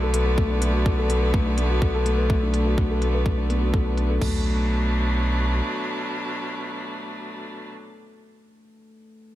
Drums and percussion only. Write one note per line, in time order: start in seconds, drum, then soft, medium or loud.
0.14 closed hi-hat medium
0.38 kick medium
0.62 closed hi-hat medium
0.86 kick loud
1.10 closed hi-hat medium
1.34 kick medium
1.58 closed hi-hat medium
1.82 kick medium
2.06 closed hi-hat medium
2.30 kick medium
2.54 closed hi-hat medium
2.78 kick medium
3.02 closed hi-hat medium
3.26 kick medium
3.50 closed hi-hat medium
3.74 kick medium
3.98 closed hi-hat medium
4.22 kick medium
4.22 floor tom medium
4.22 crash medium